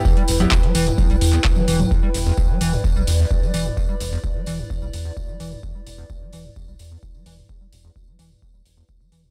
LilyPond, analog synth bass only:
\new Staff \with { instrumentName = "Analog synth bass" } { \clef bass \time 4/4 \key e \minor \tempo 4 = 129 r8 e,,16 r8. e,,16 r8 b,,16 e,16 r8. e,,16 r16 | r8 e,,16 r8. e,,16 r8 b,,16 e,16 r8. e,,16 r16 | r8 e,,16 r8. e,,16 r8 b,,16 e,16 r8. e,,16 r16 | r8 e,,16 r8. e,,16 r8 b,,16 e,16 r8. e,,16 r16 |
r8 e,,16 r8. e,,16 r8 d,,16 e,,16 r8. e,,16 r16 | }